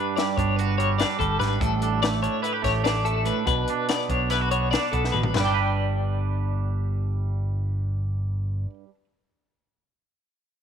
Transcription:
0.00 1.38 G2 medium
0.00 0.18 G3 medium
0.00 0.39 D4 soft
0.00 0.16 B4 medium
0.16 0.78 G3 medium
0.16 0.37 D5 medium
0.16 snare medium
0.16 closed hi-hat medium
0.37 1.01 G1 medium
0.37 1.00 D4 medium
0.37 0.56 C#5 medium
0.37 kick medium
0.37 closed hi-hat medium
0.56 1.60 F#4 soft
0.56 0.78 B4 medium
0.56 closed hi-hat medium
0.78 1.19 G3 medium
0.78 0.98 C#5 medium
0.78 closed hi-hat medium
0.99 1.82 D4 medium
0.99 1.18 D5 medium
0.99 snare medium
0.99 closed hi-hat medium
1.19 1.36 G1 medium
1.19 2.02 G3 medium
1.19 1.39 A4 medium
1.19 kick medium
1.19 closed hi-hat soft
1.39 1.57 G#1 medium
1.39 1.60 G2 medium
1.39 1.60 B4 medium
1.39 snare soft
1.39 closed hi-hat soft
1.60 2.25 A1 medium
1.60 3.24 A2 medium
1.60 2.02 A4 medium
1.60 kick medium
1.60 closed hi-hat medium
1.82 2.22 D4 medium
1.82 closed hi-hat soft
2.03 2.61 A3 medium
2.03 2.22 D5 medium
2.03 snare medium
2.03 closed hi-hat medium
2.23 2.83 D4 medium
2.23 2.42 C#5 medium
2.23 closed hi-hat medium
2.42 2.53 E4 soft
2.42 2.64 B4 medium
2.42 closed hi-hat medium
2.53 3.47 G4 soft
2.62 3.28 A1 medium
2.62 3.03 A3 medium
2.62 2.84 C#5 medium
2.62 kick medium
2.62 snare soft
2.62 closed hi-hat medium
2.84 3.69 D4 medium
2.84 3.06 D5 medium
2.84 snare medium
2.84 closed hi-hat medium
3.04 3.45 A3 medium
3.04 3.27 A4 medium
3.04 closed hi-hat soft
3.25 3.45 A2 medium
3.25 3.46 B4 medium
3.25 closed hi-hat medium
3.46 3.63 B1 medium
3.46 5.13 B2 medium
3.46 3.89 B4 medium
3.46 kick medium
3.46 closed hi-hat medium
3.68 4.10 D4 soft
3.68 closed hi-hat medium
3.89 4.50 B3 soft
3.89 4.10 D5 medium
3.89 snare medium
3.89 closed hi-hat medium
4.09 4.74 B1 medium
4.09 4.72 D4 medium
4.09 4.31 C#5 medium
4.09 kick medium
4.09 closed hi-hat soft
4.30 4.41 E4 soft
4.30 4.51 B4 medium
4.30 snare soft
4.30 closed hi-hat medium
4.41 5.35 F#4 soft
4.51 4.92 B3 medium
4.51 4.71 C#5 medium
4.51 closed hi-hat medium
4.71 5.33 D4 medium
4.71 4.93 D5 medium
4.71 snare medium
4.71 closed hi-hat medium
4.92 5.09 B1 medium
4.92 5.33 B3 soft
4.92 5.14 A4 medium
4.92 kick medium
4.92 closed hi-hat medium
5.04 snare soft
5.12 5.31 A1 medium
5.12 5.33 B2 medium
5.12 5.34 B4 medium
5.12 mid tom medium
5.23 floor tom medium
5.34 8.65 G1 medium
5.34 8.84 G2 medium
5.34 5.44 B4 medium
5.34 snare medium
5.34 floor tom medium
5.34 crash medium
5.39 8.89 G3 medium
5.39 8.70 D5 medium
5.44 8.94 D4 medium
5.44 8.74 G5 medium
5.54 9.04 B4 medium

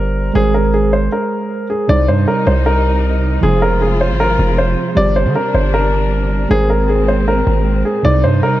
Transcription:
0.00 0.31 G1 loud
0.00 0.31 G3 medium
0.00 0.32 G4 medium
0.00 0.31 A#4 medium
0.00 0.33 C5 medium
0.00 0.33 D5 medium
0.33 1.09 G#1 loud
0.33 1.85 G#3 medium
0.33 1.86 G#4 medium
0.33 0.53 G#4 loud
0.33 1.86 A#4 medium
0.33 1.87 C5 medium
0.54 0.72 A#4 medium
0.74 0.91 G#4 medium
0.93 1.11 C5 medium
1.12 1.67 A#4 medium
1.70 1.88 G#4 medium
1.87 2.10 C2 loud
1.87 3.39 C3 medium
1.87 6.47 C3 medium
1.87 3.40 G3 medium
1.87 3.41 G3 medium
1.87 3.41 D#4 medium
1.87 3.40 D#4 medium
1.87 3.41 C5 medium
1.87 2.07 D5 loud
2.08 2.27 G2 loud
2.08 2.26 C5 medium
2.28 2.45 A#4 medium
2.47 3.39 C2 loud
2.47 2.65 C5 medium
2.66 3.39 A#4 medium
3.41 4.12 F1 loud
3.41 4.93 F3 medium
3.41 4.95 G#3 medium
3.41 4.93 F4 medium
3.41 4.95 F4 medium
3.41 3.61 G#4 loud
3.41 4.94 G#4 medium
3.45 4.95 C5 medium
3.62 3.80 A#4 medium
3.81 3.99 G#4 medium
4.01 4.18 C5 medium
4.10 4.38 G#1 loud
4.20 4.56 A#4 medium
4.39 4.76 F1 loud
4.58 4.95 C5 medium
4.95 5.27 G1 loud
4.95 6.47 G3 medium
4.95 6.49 G3 medium
4.95 6.49 D4 medium
4.95 6.47 G4 medium
4.95 6.48 C5 medium
4.95 5.15 D5 loud
4.99 6.49 D5 medium
5.16 5.34 C5 medium
5.26 5.35 D3 loud
5.36 5.53 A#4 medium
5.54 6.47 G1 loud
5.54 5.72 C5 medium
5.74 6.47 A#4 medium
6.49 7.43 G#1 loud
6.49 8.03 A#2 medium
6.49 8.00 G#3 medium
6.49 8.03 G#3 medium
6.49 8.03 C4 medium
6.49 8.01 G#4 medium
6.49 6.68 G#4 loud
6.49 8.02 A#4 medium
6.53 8.02 C5 medium
6.70 6.88 A#4 medium
6.89 7.07 G#4 medium
7.08 7.26 C5 medium
7.28 7.82 A#4 medium
7.47 7.84 G#1 loud
7.85 8.03 G#4 medium
8.03 8.25 C2 loud
8.03 8.60 C3 medium
8.03 8.60 G3 medium
8.03 8.60 D#4 medium
8.03 8.22 D5 loud
8.07 8.60 C5 medium
8.24 8.42 G2 loud
8.24 8.41 C5 medium
8.43 8.60 A#4 medium

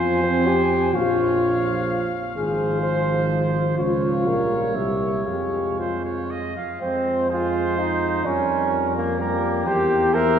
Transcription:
0.00 0.96 F2 medium
0.00 2.04 F3 medium
0.00 0.22 F4 medium
0.00 0.94 C5 medium
0.00 0.96 G#5 medium
0.24 0.49 C4 medium
0.47 0.96 G4 loud
0.95 2.08 A#1 medium
0.95 2.08 F4 medium
0.95 2.06 C#5 medium
0.95 3.51 F5 medium
2.35 3.74 G#1 medium
2.35 4.28 F3 medium
2.35 2.80 G#4 medium
2.35 3.75 C5 medium
2.83 3.30 C5 medium
3.78 4.28 C#2 soft
3.78 4.29 F4 medium
3.78 5.75 C#5 medium
3.78 4.77 F5 medium
4.26 4.77 A#1 soft
4.26 4.78 G3 soft
4.26 4.76 A#4 medium
4.75 5.26 C2 soft
4.75 5.27 A#3 soft
4.75 5.26 G4 medium
4.75 5.28 E5 soft
5.27 6.53 F2 soft
5.27 6.53 G#3 soft
5.27 5.81 G4 medium
5.27 6.56 F5 soft
5.79 6.30 F4 soft
5.79 6.03 C5 soft
6.05 6.32 C#5 soft
6.31 6.56 D#5 medium
6.57 6.81 F5 soft
6.81 8.21 F2 soft
6.81 7.27 G#3 medium
6.81 7.27 C4 medium
6.81 7.32 C5 medium
6.81 7.27 C5 soft
7.30 8.24 G#3 medium
7.30 7.80 F4 medium
7.30 7.77 G#4 medium
7.30 8.27 C5 medium
7.77 8.27 D#4 medium
7.77 8.24 C5 medium
8.25 9.64 F2 medium
8.25 9.18 G3 medium
8.25 8.95 C#4 medium
8.25 9.20 A#4 soft
8.25 8.71 C#5 medium
8.72 9.18 A#4 medium
8.96 9.19 A#3 medium
9.19 9.69 G3 medium
9.19 9.66 A#3 medium
9.19 10.12 G4 medium
9.19 9.68 A#4 medium
9.67 10.39 E2 medium
9.67 10.14 A#3 medium
9.67 10.16 G4 medium
9.67 10.13 C5 medium
10.14 10.39 A#3 medium
10.14 10.39 A#4 medium
10.14 10.39 C5 medium
10.14 10.39 E5 medium

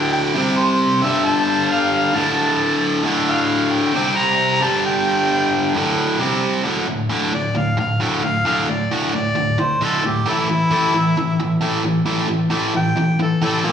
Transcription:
0.00 0.34 D2 medium
0.00 0.35 A2 medium
0.00 0.36 D3 loud
0.12 0.60 G5 loud
0.34 1.01 C3 medium
0.34 1.02 G3 loud
0.34 1.03 C4 medium
0.59 1.05 C5 medium
1.01 2.13 G2 medium
1.01 2.15 D3 loud
1.01 2.15 G3 loud
1.01 1.27 E5 loud
1.26 1.73 A5 loud
1.71 2.18 F5 loud
2.13 3.02 D2 loud
2.13 3.04 A2 medium
2.13 2.84 A5 loud
2.17 3.05 D3 medium
3.04 3.92 D2 medium
3.04 3.94 A2 medium
3.04 3.95 D3 loud
3.29 3.75 F5 medium
3.73 4.18 G5 loud
3.93 4.60 C3 medium
3.93 4.61 G3 medium
3.93 4.62 C4 loud
4.17 4.65 A#5 loud
4.60 5.73 G2 medium
4.60 5.74 D3 medium
4.60 5.75 G3 loud
4.60 4.85 A5 loud
4.86 6.17 G5 loud
5.74 6.19 D2 medium
5.74 6.19 A2 loud
5.74 6.20 D3 loud
6.19 6.63 C3 medium
6.19 6.64 G3 medium
6.19 6.65 C4 loud
6.64 6.86 D2 medium
6.64 6.86 A2 medium
6.64 6.87 D3 medium
6.88 7.08 D2 medium
6.88 7.08 A2 medium
7.09 7.31 D2 medium
7.09 7.31 A2 medium
7.09 7.32 D3 loud
7.32 7.53 D2 medium
7.32 7.53 A2 medium
7.32 7.59 D5 loud
7.56 7.76 D2 medium
7.56 7.76 A2 medium
7.56 7.79 F5 medium
7.78 7.99 D2 medium
7.78 7.99 A2 medium
7.78 8.01 F5 medium
8.00 8.22 D2 medium
8.00 8.22 A2 medium
8.00 8.23 D3 loud
8.00 8.26 G5 medium
8.23 8.43 D2 medium
8.23 8.44 A2 medium
8.23 8.46 F5 loud
8.45 8.67 D2 medium
8.45 8.67 A2 medium
8.45 8.67 D3 medium
8.45 8.71 F5 medium
8.68 8.89 D2 medium
8.68 8.89 A2 medium
8.68 8.91 D5 medium
8.91 9.12 D2 medium
8.91 9.13 A2 loud
8.91 9.13 D3 medium
9.13 9.34 D2 medium
9.13 9.34 A2 medium
9.13 9.63 D5 loud
9.35 9.56 D2 medium
9.35 9.56 A2 medium
9.59 9.79 D2 medium
9.59 9.79 A2 medium
9.59 9.82 C5 medium
9.81 10.03 D2 medium
9.81 10.03 A2 medium
9.81 10.03 D3 loud
9.81 10.08 A4 loud
10.04 10.24 D2 medium
10.04 10.24 A2 medium
10.04 10.27 G4 loud
10.26 10.47 A2 medium
10.26 10.48 E3 medium
10.26 10.48 A3 medium
10.26 11.59 E4 loud
10.49 10.69 A2 medium
10.49 10.69 E3 medium
10.71 10.92 A2 medium
10.71 10.93 E3 loud
10.71 10.93 A3 loud
10.94 11.15 A2 medium
10.94 11.15 E3 medium
11.17 11.37 A2 medium
11.17 11.37 E3 medium
11.40 11.60 A2 medium
11.40 11.60 E3 medium
11.61 11.82 A2 medium
11.61 11.83 E3 medium
11.61 11.83 A3 medium
11.84 12.04 A2 medium
11.84 12.04 E3 medium
12.05 12.27 A2 medium
12.05 12.27 E3 medium
12.05 12.28 A3 medium
12.28 12.49 A2 medium
12.28 12.49 E3 medium
12.50 12.72 A2 medium
12.50 12.72 E3 loud
12.50 12.73 A3 loud
12.74 12.94 A2 medium
12.74 12.95 E3 medium
12.74 13.19 G5 loud
12.96 13.16 A2 medium
12.96 13.17 E3 medium
13.19 13.39 A2 medium
13.19 13.40 E3 medium
13.19 13.43 A4 medium
13.42 13.63 A2 medium
13.42 13.63 E3 medium
13.42 13.63 A3 loud
13.42 13.65 A4 medium
13.64 13.72 A#2 medium
13.64 13.72 F3 medium
13.64 13.72 A#3 medium
13.64 13.72 G4 medium

